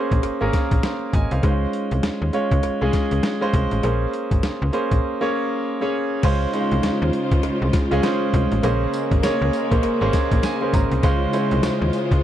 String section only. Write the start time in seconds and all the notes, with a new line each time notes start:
6.23 C#3 G#3 F4 C5
8.64 C#3 G#3 A#3
11.03 G#3 F4 C5